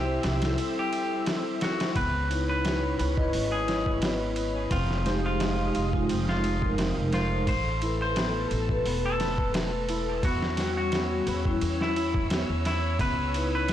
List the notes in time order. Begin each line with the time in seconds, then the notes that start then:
Already playing: C2 E4 G4 C5 E5 E6
0.23 C2, snare, ride
0.41 G3 E4 A4, snare, ride
0.58 ride
0.79 G4
0.93 ride
1.26 snare, ride
1.61 F#4, snare, ride
1.80 snare, ride
1.95 C#2 B3 B4 C#5 B5, kick, ride
2.29 D#4 E4 B4, ride
2.49 B4
2.65 B3, snare, ride
2.98 C#2 B4, ride
3.17 E4 B4 D#5, kick
3.33 G#1, open hi-hat
3.52 G#4
3.68 E4, snare, ride
3.86 kick
4.02 B3, snare, ride
4.36 ride
4.70 F1 G#3 C4 F4 F5 D#6, kick, ride
4.91 snare
5.04 G#3 D#4 G4 C5, snare, ride
5.26 F4
5.40 snare, ride
5.75 F1 F4, ride
5.93 G#3 D#4 F4, kick
6.09 F1 C4, ride
6.29 F4, snare
6.44 ride
6.61 G#3 D#4 A#4, kick
6.78 C4, snare, ride
6.98 F1
7.12 F4 C5, snare, ride
7.47 A1 A4 C5 A5, kick, ride
7.82 E4 A4 B4, ride
8.02 C5
8.16 B3, snare, ride
8.51 A1, ride
8.69 A4 B4, kick
8.85 E1 B3, open hi-hat
9.06 A4
9.20 B4, snare, ride
9.38 kick
9.54 snare, ride
9.89 E4, ride
10.23 E2 B3 F#4 C#5 E6, kick, ride
10.43 snare
10.57 G3 C#4 F#4, snare, ride
10.77 F#4
10.92 B3, snare, ride
11.27 E2 B4, ride
11.45 G3 C#4 E4, kick
11.61 E2, ride
11.81 E4, snare
11.96 E4, ride
12.14 kick
12.30 B3, snare, ride
12.49 E2
12.65 E4, snare, ride
12.99 C#2 B3 B4 B5, kick, ride
13.33 D#4 E4 B4, ride
13.55 B4
13.68 B3, snare, ride